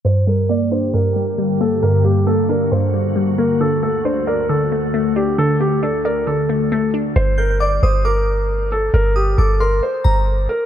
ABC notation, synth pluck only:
X:1
M:4/4
L:1/8
Q:1/4=135
K:Gm
V:1 name="Synth pluck"
G,, G, B, D G,, G, G, B, | G,, G, B, D G,, G, G, B, | D, A, D d D, A, A, D | D, A, D d D, A, A, D |
z8 | z8 |]